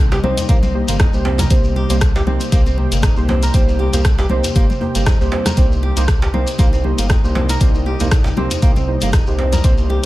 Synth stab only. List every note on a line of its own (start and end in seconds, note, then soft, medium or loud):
0.23 0.46 A#3 loud
0.23 0.46 D#4 medium
0.23 0.46 G4 medium
0.23 0.46 C5 loud
0.49 0.58 A#3 loud
0.49 0.58 D#4 medium
0.49 0.58 G4 loud
0.49 0.58 C5 loud
0.74 1.11 A#3 medium
0.74 1.11 D#4 medium
0.74 1.11 G4 medium
0.74 1.11 C5 medium
1.14 1.48 A#3 medium
1.14 1.48 D#4 medium
1.14 1.48 G4 medium
1.14 1.48 C5 loud
1.50 1.87 A#3 loud
1.50 1.87 D#4 medium
1.50 1.87 G4 loud
1.50 1.87 C5 loud
1.90 1.97 A#3 loud
1.90 1.97 D#4 medium
1.90 1.97 G4 medium
1.90 1.97 C5 loud
2.27 2.49 A#3 loud
2.27 2.49 D#4 medium
2.27 2.49 G4 medium
2.27 2.49 C5 loud
2.52 2.61 A#3 loud
2.52 2.61 D#4 loud
2.52 2.61 G4 loud
2.52 2.61 C5 loud
2.78 3.14 A#3 medium
2.78 3.14 D#4 medium
2.78 3.14 G4 medium
2.78 3.14 C5 medium
3.17 3.51 A#3 medium
3.17 3.51 D#4 medium
3.17 3.51 G4 medium
3.17 3.51 C5 loud
3.54 3.90 A#3 loud
3.54 3.90 D#4 medium
3.54 3.90 G4 medium
3.54 3.90 C5 loud
3.94 4.01 A#3 loud
3.94 4.01 D#4 medium
3.94 4.01 G4 medium
3.94 4.01 C5 loud
4.30 4.53 A#3 loud
4.30 4.53 D#4 medium
4.30 4.53 G4 medium
4.30 4.53 C5 loud
4.56 4.65 A#3 loud
4.56 4.65 D#4 medium
4.56 4.65 G4 medium
4.56 4.65 C5 loud
4.81 5.17 A#3 medium
4.81 5.17 D#4 medium
4.81 5.17 G4 medium
4.81 5.17 C5 medium
5.21 5.55 A#3 medium
5.21 5.55 D#4 medium
5.21 5.55 G4 medium
5.21 5.55 C5 loud
5.57 5.93 A#3 loud
5.57 5.94 D#4 medium
5.57 5.94 G4 loud
5.57 5.94 C5 loud
5.97 6.04 A#3 loud
5.97 6.04 D#4 medium
5.97 6.04 G4 medium
5.97 6.04 C5 loud
6.33 6.56 A#3 loud
6.33 6.56 D#4 medium
6.33 6.56 G4 medium
6.33 6.56 C5 loud
6.59 6.68 A#3 loud
6.59 6.68 D#4 medium
6.59 6.68 G4 medium
6.59 6.68 C5 loud
6.84 7.21 A#3 medium
6.84 7.21 D#4 medium
6.84 7.21 G4 medium
6.84 7.21 C5 medium
7.24 7.58 A#3 medium
7.24 7.58 D#4 medium
7.24 7.58 G4 medium
7.24 7.58 C5 loud
7.61 7.97 A#3 loud
7.61 7.97 D#4 medium
7.61 7.97 G4 medium
7.61 7.97 C5 loud
8.00 8.08 A#3 loud
8.00 8.08 D#4 medium
8.00 8.08 G4 medium
8.00 8.08 C5 loud
8.37 8.60 A#3 loud
8.37 8.60 D#4 medium
8.37 8.60 G4 medium
8.37 8.60 C5 loud
8.62 8.71 A#3 loud
8.62 8.71 D#4 medium
8.62 8.71 G4 medium
8.62 8.71 C5 loud
8.88 9.24 A#3 medium
8.88 9.24 D#4 medium
8.88 9.24 G4 medium
8.88 9.24 C5 medium
9.27 9.61 A#3 medium
9.27 9.61 D#4 medium
9.27 9.61 G4 medium
9.27 9.61 C5 loud
9.64 10.00 A#3 loud
9.64 10.00 D#4 medium
9.64 10.00 G4 medium
9.64 10.00 C5 loud